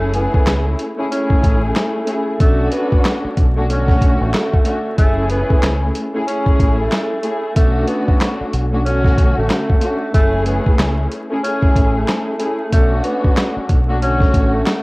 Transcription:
Already playing: F#1 A3 C#4 E4 G#4
0.14 B3, closed hi-hat
0.34 kick
0.46 C#2, snare, clap, closed hi-hat
0.79 closed hi-hat
0.97 A3 C#4 E4 G#4
1.11 A3 C#4 E4 G#4, closed hi-hat
1.30 kick
1.43 A1, kick, closed hi-hat
1.64 A3
1.76 snare, clap, closed hi-hat
2.05 A3 C#4 E4 G#4, closed hi-hat
2.38 B1 A3 C#4 D4 F#4, kick, closed hi-hat
2.72 B3, closed hi-hat
2.92 kick
3.05 snare, clap, closed hi-hat
3.24 muted fingered electric bass stroke
3.37 B1, kick, closed hi-hat
3.55 A3 C#4 D4 F#4
3.68 D3 A3 C#4 F#4, closed hi-hat
3.88 kick, snare
4.01 kick, closed hi-hat
4.21 A1 A3
4.34 snare, clap, closed hi-hat
4.54 kick
4.64 A3 C#4 D4 F#4, closed hi-hat
4.95 F#1 A3 C#4 E4 G#4, kick, closed hi-hat
5.30 B3, closed hi-hat
5.50 kick
5.63 C#2, snare, clap, closed hi-hat
5.95 closed hi-hat
6.13 A3 C#4 E4 G#4
6.27 A3 C#4 E4 G#4, closed hi-hat
6.46 kick
6.59 A1, kick, closed hi-hat
6.79 A3
6.92 snare, clap, closed hi-hat
7.21 A3 C#4 E4 G#4, closed hi-hat
7.54 B1 A3 C#4 D4 F#4, kick, closed hi-hat
7.87 B3, closed hi-hat
8.08 kick
8.21 snare, clap, closed hi-hat
8.41 muted fingered electric bass stroke
8.53 B1, closed hi-hat
8.71 A3 C#4 D4 F#4
8.84 D3 A3 C#4 F#4, closed hi-hat
9.04 kick, snare
9.18 kick, closed hi-hat
9.37 A1 A3
9.50 snare, clap, closed hi-hat
9.70 kick
9.80 A3 C#4 D4 F#4, closed hi-hat
10.12 F#1 A3 C#4 E4 G#4, kick, closed hi-hat
10.46 B3, closed hi-hat
10.66 kick
10.79 C#2, snare, clap, closed hi-hat
11.12 closed hi-hat
11.29 A3 C#4 E4 G#4
11.43 A3 C#4 E4 G#4, closed hi-hat
11.62 kick
11.76 A1, kick, closed hi-hat
11.96 A3
12.08 snare, clap, closed hi-hat
12.37 A3 C#4 E4 G#4, closed hi-hat
12.70 B1 A3 C#4 D4 F#4, kick, closed hi-hat
13.04 B3, closed hi-hat
13.24 kick
13.37 snare, clap, closed hi-hat
13.56 muted fingered electric bass stroke
13.69 B1, kick, closed hi-hat
13.87 A3 C#4 D4 F#4
14.01 D3 A3 C#4 F#4, closed hi-hat
14.20 kick, snare
14.34 A1, kick, closed hi-hat
14.53 A3
14.66 snare, clap, closed hi-hat

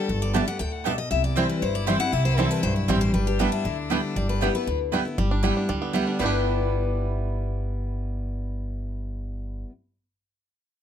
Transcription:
Already playing: A4
0.09 G1 G2
0.22 D5
0.33 D3 G3 B3 D4 G4 D5 E5 A5
0.48 B3 G4 F#5
0.59 D2 A2 G5
0.73 F#5
0.84 B2 G3 B3 D4 G4 D5 E5 A5
0.98 D#5
1.10 C2 C3 E4 E5
1.24 D5
1.36 E3 G3 C4 E4 C5 G5
1.49 B4
1.62 G1 G2 C5
1.75 D5
1.86 E3 G3 C4 E4 C5 E5 G5
2.00 C4 E4 F#5
2.12 C2 C3 E5
2.25 C5
2.37 E3 G3 C4 E4 A4 C5 G5
2.51 B4
2.63 B1 G2 C5
2.76 E4
2.88 A1 E3 G3 C4 E4 G4 C5 G5
3.01 C5
3.14 G1 G3 D4 B4
3.27 G4
3.39 G3 B3 D4 E4 A4 B4 G5
3.52 E4
3.65 D2 D3
3.90 G3 B3 D4 E4 B4 G5
4.16 G1 G3 D5
4.29 B4
4.41 G3 B3 D4 E4 G4 B4 G5
4.55 B3 E4 B4
4.67 D2 D3
4.92 G3 B3 D4 E4 B4 G5
5.05 B3 E4
5.18 G1 G3
5.31 D4
5.43 G3 B3 E4 B4 G5
5.57 D4
5.69 D2 D3 G3
5.82 B3
5.93 G3 B3 E4 B4 G5
6.07 D4
6.19 G1 G3 B3 E4 B4 G5
6.24 D4 G4

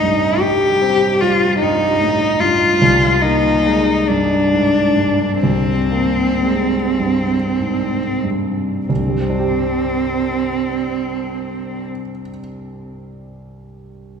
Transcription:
Already playing: C2 G2 A2 G3 C4 D#4
0.03 G2
0.40 G3 G4
0.81 C4
1.21 G3 F4
1.60 G2 D#4
2.01 A2
2.40 G2 F4
2.82 C2
3.22 A#3 D#4
3.67 G#3
4.07 G2 D4
4.53 G#2
4.97 G2
5.42 C2 C4
5.92 A#3
6.44 G#3
6.99 G2
7.59 G#2
8.24 G2
8.86 C2 C4
8.99 G2
9.09 G3
9.20 C4
9.30 D4
9.39 G4

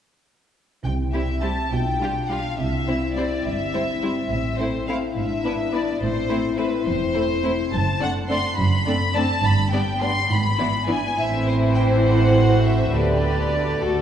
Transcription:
0.84 C2 C3 C4 E4 G5
1.13 G3 C4 E4 G4 E5
1.41 G3 C4 E4 G4 A5
1.71 B1 B2 D4 F4 G5
2.00 G3 D4 F4 G4
2.29 G3 D4 F4 G4 F5
2.58 C2 C3 C4 E4 E5
2.88 G3 C4 E4 C5
3.14 G3 C4 E4 C5 D5
3.44 G1 G2 E5
3.74 G3 C4 E4 C5
4.02 G3 C4 E4 C5
4.29 A1 A2 E5
4.58 A3 C4 E4 C5
4.87 A3 C4 E4 C5 F5
5.15 G#1 G#2 D4 E5
5.44 B3 D4 E4 B4
5.72 B3 D4 E4 B4 D5
6.00 A1 A2 C4 E4 C5
6.29 A3 C4 E4 C5
6.57 A3 C4 E4 B4 C5
6.86 E1 E2 C5
7.14 A3 C4 E4 C5
7.42 A3 C4 E4 C5
7.71 F#1 F#2 A5
7.99 A3 C4 D4 D5 F#5
8.29 A3 C4 D4 D5 C6
8.57 F#1 F#2 B5
8.86 A3 C4 D4 D5
9.15 A3 C4 D4 D5 A5
9.44 G1 G2 B5
9.72 G3 B3 D4 D5 G5
10.00 G3 B3 D4 D5 C6
10.29 G#1 G#2 B5
10.59 E3 B3 E4 D5
10.87 E3 B3 D4 E4 D5 G#5
11.17 A1 A2 E3 C4 E4 C5 E5
11.47 C5
11.75 G5
12.06 F#5
12.34 F#4
12.64 E5
12.92 D2 D3 B3 D4 G4 B4 D5
13.81 D2 A3 F#4 A4

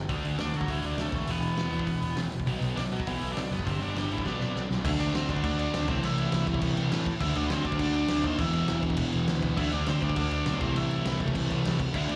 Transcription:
0.09 D2 D3 A3 D4, kick, open hi-hat
0.24 D2, open hi-hat
0.39 D2 D3 A3 D4 D5, snare, open hi-hat
0.54 D3 F#3 F#4, open hi-hat
0.61 kick
0.68 D2 D3 E3 A3 D4 E4, kick, open hi-hat
0.82 D2 D4 D5, open hi-hat
0.98 D2 D3 A3 A4, snare, open hi-hat
1.12 E1 E2 B2 E3 A3 A4, kick, open hi-hat
1.27 E1 E2 B2 E3 B4, open hi-hat
1.32 B3
1.41 E1, open hi-hat
1.57 E1 E2 B2 E3, snare, open hi-hat
1.72 E2, open hi-hat
1.79 kick
1.87 E1 E2 B2, kick, open hi-hat
2.02 E1, open hi-hat
2.16 E1 E2 B2 E3, snare, open hi-hat
2.32 E1, open hi-hat
2.40 kick
2.46 B1 B2 F#3 B3, kick, open hi-hat
2.62 B1, open hi-hat
2.76 B1 B2 F#3 D4 D5, snare, open hi-hat
2.91 B2 F#3 F#4, open hi-hat
3.00 kick
3.07 B1 B2 E3 F#3 B3 E4, kick, open hi-hat
3.21 B1, open hi-hat
3.32 D4 D5
3.37 B1 B2 F#3, snare, open hi-hat
3.51 F#1 B2 F#3 B3 B4, open hi-hat
3.59 kick
3.65 G1 G2 D3 G3 C4 C5, kick, open hi-hat
3.81 G1 D4 D5, open hi-hat
3.95 G1 G2 D3 G3 G4, snare, open hi-hat
4.10 A1 E3 E4, open hi-hat
4.18 kick
4.24 B1 B2 F#3 B3 D4 D5, kick, snare
4.28 B3
4.40 B1, snare
4.56 B1 B2 F#3, snare
4.71 B1, snare
4.83 D2 D3 A3 D4 E4 E5, kick, crash
4.88 D4
5.00 D2 D4 D5, crash
5.14 D2 C4 C5, snare, crash
5.29 D2 D3 A3 D4 D5, kick, crash
5.37 kick
5.43 D2 D3 A3 D4 D5, kick, crash
5.58 D4 D5, crash
5.73 D2 D3 A3 D4, snare, crash
5.87 C2 A2 E3 A3 C4 C5, kick, crash
6.03 C2 E4 E5, crash
6.18 crash
6.32 C2 A2 E3 A3, snare, crash
6.46 C2 A2 E3 A3, kick, crash
6.54 kick
6.62 C2, kick, crash
6.75 C2 A2 E3 A3, crash
6.92 A2, snare, crash
7.06 kick, crash
7.19 D2 D3 A3 D4 E4 E5, kick, crash
7.24 D4
7.35 D2 D4 D5, crash
7.47 B4, snare, crash
7.51 D2 C4 C5
7.65 D2 D3 A3 D4 D5, kick, crash
7.72 kick
7.79 D2 D3 A3 D4 D5, kick, crash
7.94 D4 D5, crash
8.08 D2 D3 A3 D4, snare, crash
8.24 D#2 C4 C5, kick, crash
8.38 E1 E2 B2 E3 E4 E5, kick, crash
8.42 E3
8.53 crash
8.68 E1, snare, crash
8.82 E1 E2 B2 E3, kick, crash
8.90 kick
8.97 E1 E2 B2, kick, crash
9.01 E3
9.13 E1, crash
9.27 D2 E2 B2 E3, snare, crash
9.43 kick, crash
9.57 D2 D3 A3 D4 E4 E5, kick, crash
9.72 D2 D4 D5, crash
9.86 D2 C4 C5, snare, crash
10.01 D2 D3 A3 D4 D5, kick, crash
10.10 kick
10.16 D2 D3 A3 D4 D5, kick, crash
10.20 D4
10.31 D4 D5, crash
10.46 B1 D3 A3 D4, snare, crash
10.60 C2 A2 E3 A3 C4 C5, kick, crash
10.75 C2 E4 E5, crash
10.91 crash
11.05 C2 A2 E3 A3, snare, crash
11.20 C2 A2 E3 A3, kick, crash
11.28 kick
11.35 C2, kick, crash
11.50 C2 A2 E3 A3, crash
11.65 C2, snare, crash
11.80 kick, crash
11.93 D2 D3 A3 D4 E5, kick, crash
11.97 E4
12.09 D2 D4 D5, crash

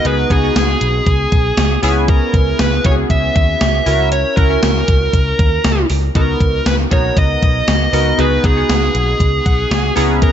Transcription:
0.05 C#2 B3 D#4 F#4 G#4 B4, closed hi-hat
0.30 C#2 B3 D#4 F#4 G#4, kick, closed hi-hat
0.43 B3 D#4 F#4 G#4
0.56 C#2, snare, closed hi-hat
0.81 B1, closed hi-hat
1.06 C#2, kick, closed hi-hat
1.32 B1, kick, closed hi-hat
1.57 C#2, snare, closed hi-hat
1.82 C#2 B3 C#4 E4 G#4, open hi-hat
2.08 A#4, kick, closed hi-hat
2.34 C#2, kick, closed hi-hat
2.59 C#2 B4, snare, closed hi-hat
2.84 C#2 B3 C#4 E4 F#4 C#5, kick, closed hi-hat
2.92 G#4
3.10 C#2 E5, kick, closed hi-hat
3.36 D#2 E5, kick, closed hi-hat
3.61 C#2, snare, closed hi-hat
3.86 C#2 C#4 E4 F#4 A#4, open hi-hat
4.12 C#5, closed hi-hat
4.37 C#2 C#4 E4 F#4 A#4, kick, closed hi-hat
4.50 C#4 E4 F#4 A#4
4.63 C#2, snare, closed hi-hat
4.88 C#2, kick, closed hi-hat
5.13 C#2, kick, closed hi-hat
5.39 D#2, kick, closed hi-hat
5.64 C#2, snare, closed hi-hat
5.90 C#2, open hi-hat
6.15 C#2 B3 D#4 F#4 A#4, kick, closed hi-hat
6.40 C#2, kick, closed hi-hat
6.66 C#2 B4, snare, closed hi-hat
6.91 B1 B3 D#4 F#4 A#4 C#5, kick, closed hi-hat
7.17 C#2 D#5, kick, closed hi-hat
7.42 B1 D#5, kick, closed hi-hat
7.68 C#2, snare, closed hi-hat
7.93 C#2 B3 D#4 F#4 A#4, open hi-hat
8.18 C#2 B3 D#4 F#4 G#4 B4, closed hi-hat
8.43 C#2 B3 D#4 F#4 G#4, kick, closed hi-hat
8.56 B3 D#4 F#4 G#4
8.69 C#2, snare, closed hi-hat
8.95 B1, closed hi-hat
9.20 C#2, kick, closed hi-hat
9.46 B1 F#5, kick, closed hi-hat
9.71 C#2 G#5, snare, closed hi-hat
9.95 C#2 B3 C#4 E4 G#4 A#5, open hi-hat
10.22 A#4, kick, closed hi-hat

